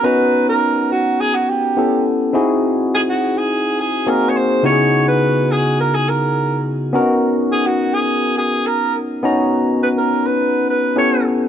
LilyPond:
<<
  \new Staff \with { instrumentName = "Alto saxophone" } { \time 4/4 \key b \major \tempo 4 = 104 b'8. ais'8. fis'8 gis'16 fis'16 g'4 r8 | r4 gis'16 fis'8 gis'8. gis'8 ais'16. cis''32 bis'8 | cis''8. b'8. gis'8 ais'16 gis'16 ais'4 r8 | r4 gis'16 fis'8 gis'8. gis'8 ais'8 r8 |
r4 b'16 ais'8 b'8. b'8 cis''8 r8 | }
  \new Staff \with { instrumentName = "Tine electric piano" } { \time 4/4 \key b \major <b cis' dis' fis' ais''>2. <b cis' e' g' a'>4 | <bis dis' e' fis' gis'>2. <ais bis dis' fis' gis'>4 | <cis b dis' e' fis' g' gis'>1 | <b cis' d' dis' fis' ais'>1 |
<b cis' dis' fis' ais''>2. <b cis' e' g' a'>4 | }
>>